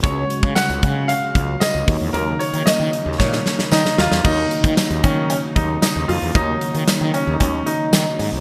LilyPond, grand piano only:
\new Staff \with { instrumentName = "Grand piano" } { \time 4/4 \key ees \minor \tempo 4 = 114 des''4 ges''4 f''4 ees''8. r16 | bes'8 des''8 ees''4 des''4 ees'8 f'8 | ees'4. des'8 des'8 ees'8 ees'8 f'8 | ees'4. des'16. ees'32 des'8 ees'4 r8 | }